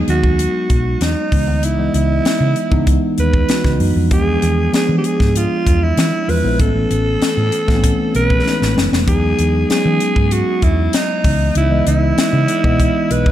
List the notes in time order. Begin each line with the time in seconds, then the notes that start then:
Already playing: F#3 G#3 B3 D#4
0.08 D#2 F#4, closed hi-hat
0.24 kick
0.39 closed hi-hat
0.70 B1, kick, closed hi-hat
1.01 E2 D#4, snare, closed hi-hat
1.31 C#2 E3 G#3 B3 D#4, kick, open hi-hat
1.48 D2
1.63 C#2 E4, closed hi-hat
1.78 E3 G#3 B3 D#5
1.94 C#2 E4, closed hi-hat
2.25 snare, closed hi-hat
2.40 C#3
2.56 closed hi-hat
2.71 C#2 E3 G#3 B3 D#4, kick
2.87 kick, closed hi-hat
3.18 D#2 B4, closed hi-hat
3.33 kick
3.48 E3 G#3 B3 F#4, snare, closed hi-hat
3.64 C#2, kick, snare
3.79 F#2 E3 G#3 B3 D#4, open hi-hat
3.96 F2
4.11 E2 F3 G#3 B3 D4 G#4, kick, closed hi-hat
4.42 E2, closed hi-hat
4.73 F3 G#3 B3 D4 G#4, snare, closed hi-hat
4.89 E3
4.98 G4
5.04 G#4, closed hi-hat
5.20 G#2, kick, snare
5.36 F4, closed hi-hat
5.67 E2, kick, closed hi-hat
5.83 E4
5.97 E3, snare, closed hi-hat
6.27 E2 F3 G#3 B3 F4 B4, open hi-hat
6.43 A#1 F3 G#3 B3 E4
6.59 A1 E3 G#3 B3 C#4 A4, kick, closed hi-hat
6.75 E3 A3 B3 C#4
6.91 A1, closed hi-hat
7.22 snare, closed hi-hat
7.37 A2
7.52 closed hi-hat
7.67 A1 E3 A3 B3 C4, kick, snare
7.75 C#4
7.84 kick, closed hi-hat
8.15 B1 B4, closed hi-hat
8.30 kick
8.45 E3 G#3 B3 D#4, snare
8.62 A1, snare
8.76 F#1 E3 G#3 B3 C#4, snare
8.92 F1, snare
9.07 E2 F#3 G#3 B3 D#4 G#4, kick, closed hi-hat
9.39 E2, closed hi-hat
9.69 F#3 G#3 B3 C#4 G#4, snare, closed hi-hat
9.85 E3
10.00 closed hi-hat
10.16 G#2, kick
10.31 F#4, closed hi-hat
10.62 E2 E4, kick, closed hi-hat
10.93 D#4, snare, closed hi-hat
11.24 C#2 E3 G#3 B3 D#4, kick, open hi-hat
11.55 C#2 E4, closed hi-hat
11.70 E3 G#3 B3 D#5
11.86 C#2 E4, closed hi-hat
12.18 snare, closed hi-hat
12.33 C#3
12.48 closed hi-hat
12.63 B2 E3 G#3 B3 D#5, kick
12.80 kick, closed hi-hat
13.10 B1 B4, closed hi-hat
13.26 kick